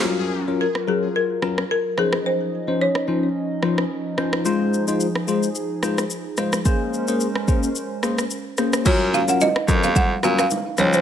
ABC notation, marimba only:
X:1
M:4/4
L:1/16
Q:"Swing 16ths" 1/4=109
K:Gblyd
V:1 name="Marimba"
z4 B2 A2 B4 B2 A2 | c4 d8- d2 z2 | z16 | z16 |
d2 f g e3 f g2 f f3 d c |]